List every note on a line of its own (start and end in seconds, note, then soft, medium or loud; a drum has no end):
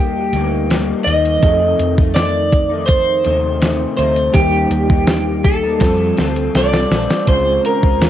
0.00 0.29 D#2 loud
0.00 0.33 G3 soft
0.00 1.37 G3 medium
0.00 0.34 A#3 medium
0.00 1.38 A#3 medium
0.00 0.33 D#4 soft
0.00 1.39 D#4 medium
0.00 1.03 G4 medium
0.00 1.40 G4 medium
0.33 0.92 D2 medium
0.33 0.69 G3 medium
0.33 0.69 A#3 medium
0.33 0.71 D#4 medium
0.33 closed hi-hat medium
0.70 1.06 G3 medium
0.70 1.07 A#3 medium
0.70 1.08 D#4 medium
0.70 snare loud
0.70 closed hi-hat medium
1.04 1.36 D#2 medium
1.04 1.42 D#3 medium
1.04 1.43 G3 medium
1.04 1.44 A#3 medium
1.04 2.11 D#5 loud
1.04 closed hi-hat medium
1.09 1.43 D#4 medium
1.25 closed hi-hat medium
1.39 1.97 F2 medium
1.39 1.98 C3 medium
1.39 4.29 F3 medium
1.39 4.30 C4 medium
1.39 4.31 D#4 medium
1.39 kick loud
1.39 closed hi-hat medium
1.44 1.73 F2 loud
1.44 1.98 D#3 medium
1.44 1.98 A3 medium
1.44 1.95 D#4 medium
1.44 1.50 G#4 medium
1.51 4.35 A4 medium
1.79 3.22 F2 loud
1.79 closed hi-hat medium
1.96 2.73 D#3 soft
1.96 2.70 A3 medium
1.96 2.69 D#4 medium
1.96 kick loud
2.14 2.86 D5 medium
2.14 snare loud
2.14 closed hi-hat loud
2.52 kick loud
2.52 closed hi-hat medium
2.69 3.25 A3 soft
2.69 3.25 D#4 medium
2.74 3.24 D#3 soft
2.86 3.96 C5 loud
2.86 kick medium
2.86 closed hi-hat loud
3.24 3.85 D#2 medium
3.24 3.60 C3 medium
3.24 3.61 D#3 medium
3.24 3.62 A3 medium
3.24 closed hi-hat medium
3.28 3.63 D#4 medium
3.61 3.97 C3 medium
3.61 3.99 D#3 medium
3.61 3.99 A3 medium
3.61 4.00 D#4 medium
3.61 snare medium
3.61 closed hi-hat medium
3.97 4.28 D2 medium
3.97 4.34 C3 medium
3.97 4.36 A3 medium
3.97 4.36 C5 medium
3.97 closed hi-hat medium
4.02 4.37 D#4 medium
4.16 closed hi-hat medium
4.32 4.64 D#2 loud
4.32 4.90 D#3 medium
4.32 5.77 G3 medium
4.32 4.90 G3 medium
4.32 5.78 A#3 medium
4.32 5.79 D#4 medium
4.32 5.40 G4 medium
4.32 kick loud
4.32 closed hi-hat medium
4.37 4.90 A#3 medium
4.37 4.89 D#4 medium
4.37 5.80 G4 medium
4.71 5.77 D#2 loud
4.71 closed hi-hat medium
4.90 5.64 G3 soft
4.90 5.64 A#3 soft
4.90 5.62 D#4 medium
4.90 kick medium
5.07 snare loud
5.07 closed hi-hat medium
5.44 6.87 A4 medium
5.44 kick loud
5.44 closed hi-hat medium
5.63 5.80 G3 soft
5.63 5.82 A#3 medium
5.63 5.81 D#4 medium
5.79 6.10 F2 loud
5.79 6.18 F3 medium
5.79 7.23 G3 medium
5.79 6.16 G3 medium
5.79 7.24 C4 medium
5.79 6.18 C4 medium
5.79 7.25 F4 medium
5.79 kick medium
5.79 snare medium
5.79 closed hi-hat loud
5.83 6.19 F4 medium
5.83 7.26 A4 medium
5.83 6.19 A4 medium
6.17 6.48 D2 medium
6.17 6.52 G3 medium
6.17 6.54 C4 medium
6.17 6.55 F4 medium
6.17 6.56 A4 medium
6.17 snare medium
6.17 closed hi-hat medium
6.36 closed hi-hat medium
6.53 6.84 C2 medium
6.53 6.90 G3 medium
6.53 6.91 C4 medium
6.53 6.92 F4 medium
6.53 6.92 A4 medium
6.53 7.28 D5 medium
6.53 snare medium
6.53 closed hi-hat medium
6.73 snare medium
6.91 7.06 A#1 loud
6.91 7.28 G3 medium
6.91 7.28 C4 medium
6.91 7.29 F4 medium
6.91 snare loud
6.91 closed hi-hat medium
6.95 7.30 A4 medium
7.10 snare loud
7.10 closed hi-hat medium
7.25 7.57 C#2 loud
7.25 7.83 C#3 medium
7.25 8.10 G#3 medium
7.25 7.83 G#3 medium
7.25 8.10 C#4 medium
7.25 8.10 F4 medium
7.25 7.65 C5 medium
7.25 kick medium
7.25 closed hi-hat medium
7.30 7.83 C4 medium
7.30 7.80 F4 medium
7.30 8.10 C5 medium
7.65 8.10 A#4 medium
7.65 closed hi-hat medium
7.81 7.98 C#2 loud
7.81 8.10 G#3 soft
7.81 8.10 C4 soft
7.81 8.10 F4 soft
7.81 kick medium
8.01 8.10 D#2 medium
8.01 snare loud
8.01 closed hi-hat medium